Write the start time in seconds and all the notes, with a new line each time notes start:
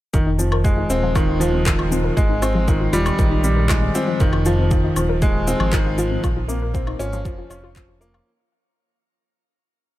0.14 F1 D#3 F4, kick, shaker
0.27 D#4
0.39 F3 C4, shaker
0.52 A#4, low woodblock
0.64 G#3 F4, kick, shaker
0.78 D#4
0.90 D#1 C4 F4, shaker
1.03 F3
1.15 D#3 F4, kick, low woodblock, shaker
1.29 F4
1.40 F3 F4, shaker
1.54 C4
1.66 D#3 F4, kick, clap, shaker
1.79 D#4, low woodblock
1.91 F3 C4, shaker
2.04 A#4
2.17 G#1 G#3 F4, kick, shaker
2.29 D#4
2.42 C4 F4, low woodblock, shaker
2.55 F3
2.68 D#3 F4, kick, shaker
2.81 F4
2.93 D#1 G3 F4, shaker
3.06 C4, low woodblock, shaker
3.19 A#1 D#3 F4, kick, shaker
3.31 D#4
3.44 G3 C4, shaker
3.57 A#4
3.69 G#3 F4, kick, clap, low woodblock, shaker
3.82 D#4
3.95 C4 F4, shaker
4.08 F3
4.20 F1 D#3 F4, kick, shaker
4.33 F4, low woodblock
4.45 F3 F4, shaker
4.59 C4
4.71 D#3 F4, kick, shaker
4.84 D#4
4.96 D#1 F3 C4, low woodblock, shaker
5.09 A#4
5.22 G#3 F4, kick, shaker
5.34 D#4
5.47 C4 F4, shaker
5.60 G#1 F3, low woodblock
5.73 D#3 F4, kick, clap, shaker
5.86 F4
5.98 F3 F4, shaker
6.11 C4
6.23 A#1 F3 F4, kick, low woodblock, shaker
6.37 D#4
6.48 A#3 C4, shaker
6.62 A#4
6.74 C4 F4, kick, shaker
6.87 D#4, low woodblock
6.99 G#1 C#4 F4, shaker
7.13 F3, shaker
7.25 F1 F3 F4, kick, shaker
7.38 F4
7.50 F1 C#4 F4, low woodblock, shaker
7.64 F4
7.76 F3 F4, kick, clap, shaker
7.89 F4
8.01 A#3 F4, shaker
8.14 F5, low woodblock